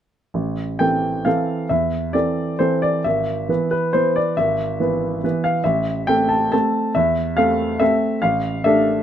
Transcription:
0.34 0.78 A1 soft
0.79 1.22 E3 soft
0.79 1.22 C4 soft
0.79 1.22 A4 soft
0.79 1.26 G5 medium
1.25 1.66 E3 soft
1.25 1.67 C4 soft
1.25 1.67 A4 soft
1.25 1.70 F5 soft
1.69 2.13 E2 soft
1.69 2.14 E5 soft
2.13 2.56 E3 soft
2.13 2.56 C4 soft
2.13 2.56 A4 soft
2.13 2.59 D5 medium
2.59 3.01 E3 soft
2.59 3.01 C4 soft
2.59 3.01 A4 soft
2.59 2.82 C5 medium
2.82 3.05 D5 medium
3.04 3.48 G#1 soft
3.04 3.72 E5 medium
3.49 3.90 E3 soft
3.49 3.91 B3 soft
3.49 3.69 B4 soft
3.71 3.94 B4 medium
3.93 4.34 E3 soft
3.93 4.34 B3 soft
3.93 4.35 B4 soft
3.93 4.16 C5 medium
4.16 4.38 D5 medium
4.37 4.79 G#1 soft
4.37 5.45 E5 medium
4.80 5.20 E3 soft
4.80 5.20 B3 soft
4.80 5.20 B4 soft
5.24 5.62 E3 soft
5.24 5.62 B3 soft
5.24 5.62 B4 soft
5.44 5.65 F5 medium
5.64 6.06 A1 soft
5.64 6.07 E5 medium
6.07 6.49 A3 soft
6.07 6.49 C4 soft
6.07 6.49 A4 soft
6.07 6.30 G5 medium
6.29 6.50 A5 soft
6.52 6.92 A3 soft
6.52 6.92 C4 soft
6.52 6.92 A4 soft
6.52 6.95 A5 medium
6.95 7.36 E2 soft
6.95 7.37 E5 medium
7.37 7.77 A3 soft
7.37 7.77 C4 soft
7.37 7.77 A4 soft
7.37 7.80 F5 medium
7.80 8.19 A3 soft
7.80 8.19 C4 soft
7.80 8.19 A4 soft
7.80 8.22 E5 medium
8.22 8.63 A1 soft
8.22 8.64 F5 medium
8.64 9.03 A3 soft
8.64 9.03 D4 soft
8.64 9.03 A4 soft
8.64 9.03 E5 medium

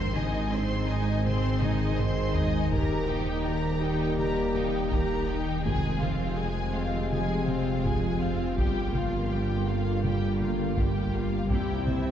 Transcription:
0.00 2.68 G#1 medium
0.00 2.72 G#1 medium
0.00 2.68 G#2 medium
0.00 5.61 D#3 medium
0.00 5.64 D#3 medium
0.00 2.68 G#3 medium
0.00 0.13 C4 medium
0.00 2.68 C4 medium
0.00 5.61 D#4 medium
0.00 5.64 D#4 medium
0.00 2.72 G#4 medium
0.00 0.14 C5 medium
0.00 2.71 C5 medium
0.00 0.13 C6 medium
0.15 0.52 D#4 medium
0.15 0.53 D#5 medium
0.15 0.52 G#5 medium
0.15 taiko mid soft
0.52 0.89 C4 medium
0.52 0.89 C5 medium
0.52 0.89 C6 medium
0.88 1.25 D#4 medium
0.88 1.26 D#5 medium
0.88 1.25 G#5 medium
1.25 1.59 C4 medium
1.25 1.59 C5 medium
1.25 1.60 C6 medium
1.25 taiko mid medium
1.62 1.98 D#4 medium
1.62 1.99 D#5 medium
1.62 1.99 G#5 medium
1.62 taiko mid medium
1.98 2.35 C4 medium
1.98 2.35 C5 medium
1.98 2.35 C6 medium
1.98 taiko low-mid medium
2.35 2.72 D#4 medium
2.35 2.72 D#5 medium
2.35 2.72 G#5 medium
2.35 taiko low medium
2.71 5.66 D#1 medium
2.71 5.60 D#2 medium
2.71 5.60 G3 medium
2.71 5.61 A#3 medium
2.71 3.06 G4 medium
2.71 5.65 G4 medium
2.71 3.06 A#4 medium
2.71 5.65 A#4 medium
2.71 3.06 A#5 medium
2.71 taiko medium
3.08 3.45 D#4 medium
3.08 3.45 G4 medium
3.08 3.45 G5 medium
3.08 taiko mid soft
3.44 3.82 G4 medium
3.44 3.81 A#4 medium
3.44 3.81 A#5 medium
3.82 4.19 D#4 medium
3.82 4.18 G4 medium
3.82 4.18 G5 medium
4.18 4.53 G4 medium
4.18 4.52 A#4 medium
4.18 4.52 A#5 medium
4.18 taiko mid medium
4.53 4.92 D#4 medium
4.53 4.91 G4 medium
4.53 4.92 G5 medium
4.53 taiko mid soft
4.90 5.29 G4 medium
4.90 5.28 A#4 medium
4.90 5.28 A#5 medium
4.90 taiko medium
5.27 5.65 D#4 medium
5.27 5.64 G4 medium
5.27 5.65 G5 medium
5.63 8.53 F1 medium
5.63 8.59 F1 medium
5.63 8.53 F2 medium
5.63 8.41 C3 medium
5.63 8.58 F3 medium
5.63 8.41 G#3 medium
5.63 5.99 G#3 medium
5.63 8.41 C4 medium
5.63 8.57 C4 medium
5.63 11.46 F4 medium
5.63 11.50 F4 medium
5.63 5.98 G#4 medium
5.63 8.57 G#4 medium
5.63 5.99 G#5 medium
5.63 taiko medium
6.00 6.38 C4 medium
6.00 6.37 F4 medium
6.00 6.38 F5 medium
6.00 taiko mid medium
6.36 6.75 G#3 medium
6.36 6.74 G#4 medium
6.36 6.74 G#5 medium
6.74 7.11 C4 medium
6.74 7.11 F4 medium
6.74 7.11 F5 medium
7.11 7.45 G#3 medium
7.11 7.45 G#4 medium
7.11 7.45 G#5 medium
7.11 taiko mid medium
7.47 7.85 C4 medium
7.47 7.84 F4 medium
7.47 7.84 F5 medium
7.47 taiko mid soft
7.84 8.21 G#3 medium
7.84 8.21 G#4 medium
7.84 8.21 G#5 medium
7.84 taiko medium
8.21 8.58 C4 medium
8.21 8.57 F4 medium
8.21 8.57 F5 medium
8.56 11.52 G1 medium
8.56 11.46 G1 medium
8.56 11.46 G2 medium
8.56 11.46 D3 medium
8.56 12.11 G3 medium
8.56 8.92 G3 medium
8.56 11.50 A#3 medium
8.56 11.46 A#3 medium
8.56 8.91 G4 medium
8.56 12.11 G4 medium
8.56 8.92 G5 soft
8.56 taiko medium
8.94 9.30 A#3 soft
8.94 9.30 F4 medium
8.94 9.31 F5 medium
8.94 taiko mid soft
9.31 9.68 G3 soft
9.31 9.67 G4 soft
9.31 9.67 G5 medium
9.67 10.04 A#3 soft
9.67 10.03 F4 soft
9.67 10.04 F5 medium
10.04 10.38 G3 medium
10.04 10.38 G4 medium
10.04 10.38 G5 medium
10.04 taiko mid soft
10.40 10.77 A#3 soft
10.40 10.77 F4 soft
10.40 10.78 F5 soft
10.40 taiko mid soft
10.77 11.13 G3 soft
10.77 11.14 G4 soft
10.77 11.14 G5 soft
10.77 taiko medium
11.14 11.50 A#3 soft
11.14 11.51 F4 soft
11.14 11.50 F5 soft
11.50 12.11 C2 medium
11.50 12.11 C2 soft
11.50 12.11 C3 medium
11.50 12.11 C4 medium
11.50 11.84 E4 soft
11.50 12.11 E4 medium
11.50 11.85 G4 soft
11.50 11.85 G5 soft
11.50 taiko medium
11.50 swell soft
11.87 12.11 C4 soft
11.87 12.11 E4 soft
11.87 12.11 E5 soft
11.87 taiko mid medium

